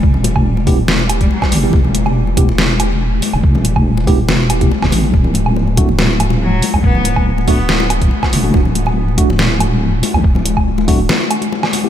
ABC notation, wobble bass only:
X:1
M:4/4
L:1/16
Q:"Swing 16ths" 1/4=141
K:Em
V:1 name="Wobble bass" clef=bass
E,,,8 E,,,4 z2 F,,,2 | E,,,12- E,,,2 z D,,, | E,,,8 E,,,4 z D,,, A,,,2 | D,,,12- D,,,2 z C,, |
D,,,8 D,,,4 z2 E,,,2 | D,,,12- D,,,2 z C,, | D,,,8 z8 |]